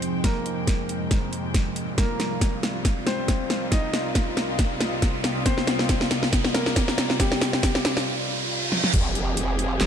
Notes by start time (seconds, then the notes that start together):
Already playing: F2 C3 F3 G#3 C4 D#4 C5 G5, riser
0.02 closed hi-hat
0.24 A#3 A#4, kick, snare, closed hi-hat
0.46 closed hi-hat
0.67 kick, snare, closed hi-hat
0.89 closed hi-hat
1.11 kick, snare, closed hi-hat
1.33 closed hi-hat
1.54 kick, snare, closed hi-hat
1.76 closed hi-hat
1.98 C2 C3 G3 A#3 C4 F4 A#4, kick, snare, closed hi-hat
2.12 A#4
2.19 F4, snare, closed hi-hat
2.32 D#5
2.41 kick, snare, closed hi-hat
2.63 snare, closed hi-hat
2.85 kick, snare, closed hi-hat
3.07 C4 C5, snare, closed hi-hat
3.28 kick, snare, closed hi-hat
3.50 snare, closed hi-hat
3.72 D#4 D#5, kick, snare, closed hi-hat
3.93 snare, closed hi-hat
4.15 kick, snare, closed hi-hat
4.37 snare, closed hi-hat
4.59 kick, snare, closed hi-hat
4.81 snare, closed hi-hat
5.02 kick, snare, closed hi-hat
5.24 snare, closed hi-hat
5.46 C4 C5, kick, snare, closed hi-hat
5.58 snare
5.67 snare, closed hi-hat
5.79 snare
5.89 kick, snare, closed hi-hat
6.01 snare
6.11 snare, closed hi-hat
6.23 snare
6.33 kick, snare, closed hi-hat
6.45 snare
6.54 A#3 A#4, snare, closed hi-hat
6.66 snare
6.76 kick, snare, closed hi-hat
6.88 snare
6.98 snare, closed hi-hat
7.10 snare
7.20 G3 G4, kick, snare, closed hi-hat
7.32 snare
7.41 snare, closed hi-hat
7.53 snare
7.63 kick, snare, closed hi-hat
7.75 snare
7.85 snare, closed hi-hat
7.97 snare
8.07 reverse cymbal
8.72 snare
8.84 snare
8.94 F1 F3 C4 G4 G#4, kick, closed hi-hat, crash, impact
9.15 closed hi-hat
9.37 closed hi-hat
9.59 closed hi-hat
9.81 F1, snare, clap, closed hi-hat